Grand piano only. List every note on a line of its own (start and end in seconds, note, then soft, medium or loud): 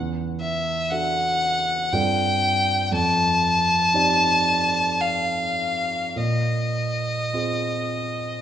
0.00 0.87 E2 medium
0.91 1.90 D4 soft
0.91 1.90 F#4 soft
0.91 1.90 A4 soft
0.91 1.90 E5 medium
1.92 2.89 G2 medium
1.92 2.88 C4 soft
1.92 2.88 F4 soft
1.92 2.89 A4 soft
1.92 2.89 D5 soft
2.92 3.91 F2 medium
3.94 6.13 C4 soft
3.94 6.13 D#4 soft
3.94 6.13 G4 soft
3.94 6.14 D5 medium
6.16 7.30 A#2 medium
7.33 8.42 C4 soft
7.33 8.42 F4 soft
7.33 8.42 G#4 soft
7.33 8.42 C5 soft